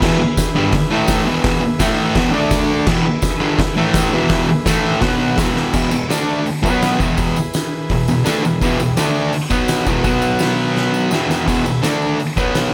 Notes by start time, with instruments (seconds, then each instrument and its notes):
Already playing: transistor combo organ G#4 B4 E5
0.02 distorted electric guitar E2 B2 E3, kick, snare, crash
0.19 muted distorted electric guitar stroke
0.37 kick, snare, open hi-hat, tambourine
0.55 distorted electric guitar G2 D3 G3
0.72 muted distorted electric guitar stroke, kick, snare, open hi-hat
0.90 distorted electric guitar A2 E3 A3, transistor combo organ E4 A4 E5
1.07 kick, snare, open hi-hat, tambourine
1.25 distorted electric guitar E2 B2 E3, transistor combo organ G#4 B4
1.30 transistor combo organ E5
1.44 kick, snare, open hi-hat
1.61 muted distorted electric guitar stroke
1.79 distorted electric guitar A2 E3 A3, transistor combo organ E4 A4 E5, kick, snare, open hi-hat, tambourine
2.15 distorted electric guitar E2 B2 E3, kick, snare, open hi-hat
2.31 distorted electric guitar D3 A3 D4, transistor combo organ D4 A4 D5
2.50 kick, snare, open hi-hat, tambourine
2.87 distorted electric guitar E2 B2 E3, transistor combo organ G#4 B4 E5, kick, snare, crash
3.05 muted distorted electric guitar stroke
3.22 kick, snare, open hi-hat, tambourine
3.40 distorted electric guitar G2 D3 G3
3.59 muted distorted electric guitar stroke, kick, snare, open hi-hat
3.76 distorted electric guitar A2 E3 A3, transistor combo organ E4 A4 E5
3.93 kick, snare, open hi-hat, tambourine
4.12 distorted electric guitar E2 B2 E3, transistor combo organ G#4 B4 E5
4.29 kick, snare, open hi-hat
4.48 muted distorted electric guitar stroke
4.65 distorted electric guitar A2 E3 A3, transistor combo organ E4 A4 E5, kick, snare, open hi-hat, tambourine
5.00 distorted electric guitar B2 F#3 B3, transistor combo organ F#4 B4 F#5, kick, snare, open hi-hat
5.35 distorted electric guitar E2 B2 E3, transistor combo organ G#4 B4 E5, kick, snare, open hi-hat, tambourine
5.56 snare
5.71 distorted electric guitar E2 B2 E3, transistor combo organ G#4 B4 E5, kick, crash, tambourine
5.91 distorted electric guitar E2 B2, tambourine
6.08 distorted electric guitar D3 A3 D4, transistor combo organ D4 A4 D5, snare, open hi-hat, tambourine
6.29 tambourine
6.46 muted distorted electric guitar stroke, open hi-hat, tambourine
6.62 distorted electric guitar B2 F#3 B3, transistor combo organ B3 F#4 B4, kick, tambourine
6.82 snare, open hi-hat, tambourine
6.98 distorted electric guitar E2 B2 E3, transistor combo organ E4 G#4 B4, kick, tambourine
7.17 kick, open hi-hat, tambourine
7.36 tambourine
7.54 snare, open hi-hat, tambourine
7.90 distorted electric guitar E2 B2, kick, open hi-hat, tambourine
8.08 distorted electric guitar E2 B2, tambourine
8.24 distorted electric guitar D3 A3 D4, snare, open hi-hat, tambourine
8.43 distorted electric guitar E2 B2, tambourine
8.61 distorted electric guitar E2 B2 E3, kick, open hi-hat, tambourine
8.79 distorted electric guitar E2 B2, tambourine
8.95 distorted electric guitar D3 A3, transistor combo organ D4 A4 D5, snare, open hi-hat, tambourine
8.99 distorted electric guitar D4
9.15 tambourine
9.33 muted distorted electric guitar stroke, open hi-hat, tambourine
9.50 distorted electric guitar B2 F#3 B3, transistor combo organ F#4 B4 F#5, kick, tambourine
9.68 snare, open hi-hat, tambourine
9.85 distorted electric guitar E2 B2 E3, kick, tambourine
10.03 distorted electric guitar B2 F#3 B3, transistor combo organ F#4 B4 F#5, kick, open hi-hat, tambourine
10.22 tambourine
10.39 snare, open hi-hat, tambourine
10.76 snare, tambourine
10.94 tambourine
11.08 distorted electric guitar E2, transistor combo organ G#4 B4 E5, tambourine
11.12 distorted electric guitar B2 E3, snare
11.30 snare, tambourine
11.47 distorted electric guitar E2 B2 E3, kick, open hi-hat, tambourine, splash
11.65 distorted electric guitar E2 B2, tambourine
11.82 distorted electric guitar D3 A3 D4, transistor combo organ D4 A4 D5, snare, open hi-hat, tambourine
12.02 tambourine
12.19 muted distorted electric guitar stroke, open hi-hat, tambourine
12.35 distorted electric guitar B2 F#3 B3, transistor combo organ B3 F#4 B4, kick, tambourine
12.55 snare, open hi-hat, tambourine